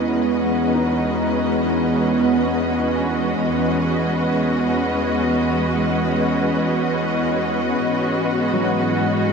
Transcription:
0, 0, Header, 1, 5, 480
1, 0, Start_track
1, 0, Key_signature, 4, "major"
1, 0, Tempo, 983607
1, 937, Time_signature, 3, 2, 24, 8
1, 4552, End_track
2, 0, Start_track
2, 0, Title_t, "String section"
2, 0, Program_c, 0, 48
2, 0, Note_on_c, 0, 56, 77
2, 0, Note_on_c, 0, 61, 71
2, 0, Note_on_c, 0, 66, 79
2, 0, Note_on_c, 0, 71, 62
2, 0, Note_on_c, 0, 75, 66
2, 4552, Note_off_c, 0, 56, 0
2, 4552, Note_off_c, 0, 61, 0
2, 4552, Note_off_c, 0, 66, 0
2, 4552, Note_off_c, 0, 71, 0
2, 4552, Note_off_c, 0, 75, 0
2, 4552, End_track
3, 0, Start_track
3, 0, Title_t, "Felt piano"
3, 0, Program_c, 1, 0
3, 0, Control_c, 1, 64, 127
3, 0, Note_on_c, 1, 54, 66
3, 0, Note_on_c, 1, 56, 68
3, 0, Note_on_c, 1, 63, 76
3, 0, Note_on_c, 1, 64, 70
3, 0, Note_on_c, 1, 66, 67
3, 0, Note_on_c, 1, 87, 55
3, 352, Note_off_c, 1, 63, 0
3, 359, Note_on_c, 1, 63, 75
3, 460, Note_off_c, 1, 64, 0
3, 512, Note_off_c, 1, 87, 0
3, 699, Note_off_c, 1, 56, 0
3, 707, Note_on_c, 1, 56, 68
3, 1079, Note_on_c, 1, 78, 48
3, 1441, Note_on_c, 1, 80, 51
3, 1538, Note_off_c, 1, 78, 0
3, 2322, Note_off_c, 1, 63, 0
3, 2669, Note_off_c, 1, 56, 0
3, 3404, Note_off_c, 1, 80, 0
3, 3824, Control_c, 1, 64, 0
3, 3828, Note_off_c, 1, 54, 0
3, 3828, Note_off_c, 1, 66, 0
3, 3894, Control_c, 1, 64, 127
3, 4164, Note_on_c, 1, 54, 60
3, 4523, Note_on_c, 1, 56, 49
3, 4552, Note_off_c, 1, 54, 0
3, 4552, Note_off_c, 1, 56, 0
3, 4552, End_track
4, 0, Start_track
4, 0, Title_t, "Synth drone"
4, 0, Program_c, 2, 95
4, 0, Note_on_c, 2, 52, 79
4, 0, Note_on_c, 2, 59, 76
4, 4552, Note_off_c, 2, 52, 0
4, 4552, Note_off_c, 2, 59, 0
4, 4552, End_track
5, 0, Start_track
5, 0, Title_t, "Double bass section"
5, 0, Program_c, 3, 48
5, 0, Note_on_c, 3, 40, 74
5, 3797, Note_off_c, 3, 40, 0
5, 3819, Note_on_c, 3, 44, 66
5, 4552, Note_off_c, 3, 44, 0
5, 4552, End_track
0, 0, End_of_file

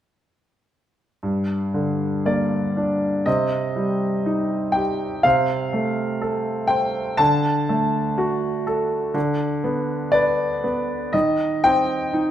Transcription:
0, 0, Header, 1, 2, 480
1, 0, Start_track
1, 0, Tempo, 1025641
1, 576, Time_signature, 4, 2, 24, 8
1, 1532, Tempo, 983607
1, 5941, End_track
2, 0, Start_track
2, 0, Title_t, "Grand piano"
2, 0, Program_c, 0, 0
2, 575, Note_on_c, 0, 43, 44
2, 665, Control_c, 0, 64, 127
2, 815, Note_on_c, 0, 50, 36
2, 1056, Note_on_c, 0, 58, 36
2, 1058, Note_on_c, 0, 74, 51
2, 1296, Note_on_c, 0, 62, 40
2, 1510, Note_off_c, 0, 50, 0
2, 1511, Note_off_c, 0, 43, 0
2, 1515, Note_off_c, 0, 58, 0
2, 1523, Note_off_c, 0, 62, 0
2, 1524, Note_on_c, 0, 75, 59
2, 1526, Note_on_c, 0, 48, 49
2, 1536, Control_c, 0, 64, 0
2, 1545, Note_off_c, 0, 74, 0
2, 1616, Control_c, 0, 64, 127
2, 1769, Note_on_c, 0, 55, 35
2, 2013, Note_on_c, 0, 63, 39
2, 2238, Note_on_c, 0, 79, 62
2, 2257, Note_on_c, 0, 67, 39
2, 2273, Note_off_c, 0, 75, 0
2, 2471, Note_off_c, 0, 79, 0
2, 2474, Note_off_c, 0, 48, 0
2, 2475, Note_off_c, 0, 55, 0
2, 2482, Note_off_c, 0, 63, 0
2, 2488, Note_on_c, 0, 77, 68
2, 2490, Note_off_c, 0, 67, 0
2, 2495, Note_on_c, 0, 48, 51
2, 2503, Control_c, 0, 64, 0
2, 2586, Control_c, 0, 64, 127
2, 2731, Note_on_c, 0, 57, 40
2, 2967, Note_on_c, 0, 69, 41
2, 3181, Note_off_c, 0, 77, 0
2, 3192, Note_on_c, 0, 79, 71
2, 3201, Note_on_c, 0, 72, 44
2, 3423, Note_off_c, 0, 57, 0
2, 3424, Note_off_c, 0, 48, 0
2, 3429, Note_off_c, 0, 69, 0
2, 3436, Note_off_c, 0, 72, 0
2, 3436, Note_on_c, 0, 81, 75
2, 3443, Note_on_c, 0, 50, 55
2, 3446, Note_off_c, 0, 79, 0
2, 3451, Control_c, 0, 64, 0
2, 3549, Control_c, 0, 64, 127
2, 3689, Note_on_c, 0, 57, 43
2, 3925, Note_on_c, 0, 66, 45
2, 4142, Note_off_c, 0, 81, 0
2, 4165, Note_on_c, 0, 69, 43
2, 4382, Note_off_c, 0, 50, 0
2, 4384, Note_off_c, 0, 57, 0
2, 4387, Note_off_c, 0, 66, 0
2, 4395, Note_off_c, 0, 69, 0
2, 4396, Note_on_c, 0, 50, 57
2, 4408, Control_c, 0, 64, 0
2, 4481, Control_c, 0, 64, 127
2, 4639, Note_on_c, 0, 59, 44
2, 4871, Note_on_c, 0, 74, 74
2, 4883, Note_on_c, 0, 71, 47
2, 5119, Note_off_c, 0, 59, 0
2, 5126, Note_on_c, 0, 59, 45
2, 5347, Note_off_c, 0, 50, 0
2, 5356, Note_off_c, 0, 71, 0
2, 5363, Note_off_c, 0, 59, 0
2, 5364, Note_on_c, 0, 75, 68
2, 5370, Note_on_c, 0, 51, 54
2, 5376, Control_c, 0, 64, 0
2, 5379, Note_off_c, 0, 74, 0
2, 5470, Control_c, 0, 64, 127
2, 5614, Note_on_c, 0, 79, 84
2, 5616, Note_on_c, 0, 60, 44
2, 5617, Note_off_c, 0, 75, 0
2, 5856, Note_on_c, 0, 63, 45
2, 5941, Note_off_c, 0, 51, 0
2, 5941, Note_off_c, 0, 60, 0
2, 5941, Note_off_c, 0, 63, 0
2, 5941, Note_off_c, 0, 79, 0
2, 5941, End_track
0, 0, End_of_file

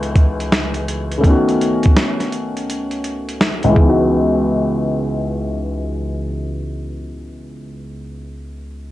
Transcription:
0, 0, Header, 1, 3, 480
1, 0, Start_track
1, 0, Key_signature, 4, "minor"
1, 0, Tempo, 722892
1, 820, Time_signature, 4, 2, 24, 8
1, 5921, End_track
2, 0, Start_track
2, 0, Title_t, "Felt piano"
2, 0, Program_c, 0, 0
2, 0, Control_c, 0, 64, 127
2, 0, Note_on_c, 0, 37, 72
2, 0, Note_on_c, 0, 52, 66
2, 0, Note_on_c, 0, 56, 66
2, 0, Note_on_c, 0, 59, 65
2, 0, Note_on_c, 0, 63, 58
2, 0, Note_on_c, 0, 66, 71
2, 0, Note_on_c, 0, 69, 60
2, 774, Note_off_c, 0, 37, 0
2, 780, Note_on_c, 0, 49, 47
2, 782, Note_off_c, 0, 52, 0
2, 790, Note_off_c, 0, 56, 0
2, 798, Note_off_c, 0, 59, 0
2, 799, Note_on_c, 0, 57, 56
2, 806, Note_off_c, 0, 63, 0
2, 815, Note_off_c, 0, 66, 0
2, 819, Note_on_c, 0, 59, 56
2, 822, Note_on_c, 0, 51, 63
2, 827, Control_c, 0, 64, 0
2, 833, Note_off_c, 0, 69, 0
2, 841, Note_on_c, 0, 61, 56
2, 856, Note_off_c, 0, 49, 0
2, 860, Note_on_c, 0, 66, 68
2, 959, Control_c, 0, 64, 127
2, 2418, Note_on_c, 0, 37, 71
2, 2451, Note_on_c, 0, 52, 64
2, 2463, Note_off_c, 0, 57, 0
2, 2473, Note_off_c, 0, 59, 0
2, 2474, Note_off_c, 0, 51, 0
2, 2483, Note_on_c, 0, 56, 67
2, 2484, Note_off_c, 0, 61, 0
2, 2493, Note_off_c, 0, 66, 0
2, 2510, Control_c, 0, 64, 0
2, 2516, Note_on_c, 0, 59, 65
2, 2548, Note_on_c, 0, 63, 62
2, 2580, Note_on_c, 0, 66, 87
2, 2597, Control_c, 0, 64, 127
2, 2749, Control_c, 0, 64, 0
2, 2875, Control_c, 0, 64, 127
2, 4625, Note_off_c, 0, 37, 0
2, 4659, Note_off_c, 0, 52, 0
2, 4691, Note_off_c, 0, 56, 0
2, 4723, Note_off_c, 0, 59, 0
2, 4756, Note_off_c, 0, 63, 0
2, 4788, Note_off_c, 0, 66, 0
2, 5921, End_track
3, 0, Start_track
3, 0, Title_t, "Drums"
3, 18, Note_on_c, 9, 42, 38
3, 85, Note_off_c, 9, 42, 0
3, 103, Note_on_c, 9, 36, 83
3, 103, Note_on_c, 9, 42, 59
3, 169, Note_off_c, 9, 42, 0
3, 170, Note_off_c, 9, 36, 0
3, 267, Note_on_c, 9, 42, 39
3, 333, Note_off_c, 9, 42, 0
3, 347, Note_on_c, 9, 38, 109
3, 354, Note_on_c, 9, 42, 73
3, 413, Note_off_c, 9, 38, 0
3, 420, Note_off_c, 9, 42, 0
3, 493, Note_on_c, 9, 42, 37
3, 559, Note_off_c, 9, 42, 0
3, 587, Note_on_c, 9, 42, 66
3, 653, Note_off_c, 9, 42, 0
3, 741, Note_on_c, 9, 42, 39
3, 807, Note_off_c, 9, 42, 0
3, 821, Note_on_c, 9, 36, 94
3, 825, Note_on_c, 9, 42, 72
3, 888, Note_off_c, 9, 36, 0
3, 891, Note_off_c, 9, 42, 0
3, 987, Note_on_c, 9, 42, 43
3, 1053, Note_off_c, 9, 42, 0
3, 1071, Note_on_c, 9, 42, 59
3, 1138, Note_off_c, 9, 42, 0
3, 1216, Note_on_c, 9, 42, 40
3, 1233, Note_on_c, 9, 36, 79
3, 1282, Note_off_c, 9, 42, 0
3, 1299, Note_off_c, 9, 36, 0
3, 1305, Note_on_c, 9, 38, 94
3, 1308, Note_on_c, 9, 42, 58
3, 1371, Note_off_c, 9, 38, 0
3, 1374, Note_off_c, 9, 42, 0
3, 1461, Note_on_c, 9, 38, 25
3, 1463, Note_on_c, 9, 42, 38
3, 1528, Note_off_c, 9, 38, 0
3, 1529, Note_off_c, 9, 42, 0
3, 1543, Note_on_c, 9, 42, 46
3, 1609, Note_off_c, 9, 42, 0
3, 1705, Note_on_c, 9, 42, 44
3, 1771, Note_off_c, 9, 42, 0
3, 1791, Note_on_c, 9, 42, 64
3, 1857, Note_off_c, 9, 42, 0
3, 1933, Note_on_c, 9, 42, 30
3, 1999, Note_off_c, 9, 42, 0
3, 2019, Note_on_c, 9, 42, 53
3, 2086, Note_off_c, 9, 42, 0
3, 2182, Note_on_c, 9, 42, 37
3, 2249, Note_off_c, 9, 42, 0
3, 2263, Note_on_c, 9, 38, 101
3, 2270, Note_on_c, 9, 42, 73
3, 2329, Note_off_c, 9, 38, 0
3, 2336, Note_off_c, 9, 42, 0
3, 2409, Note_on_c, 9, 42, 36
3, 2475, Note_off_c, 9, 42, 0
3, 2498, Note_on_c, 9, 36, 92
3, 2564, Note_off_c, 9, 36, 0
3, 5921, End_track
0, 0, End_of_file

